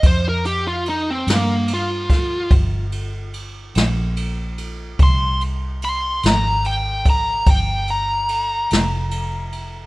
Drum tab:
RD |xxxxxxxxxxxx|xxxxxxxxxxxx|
SD |---o-o---o--|---o-----o--|
BD |o----oo-----|o----oo-----|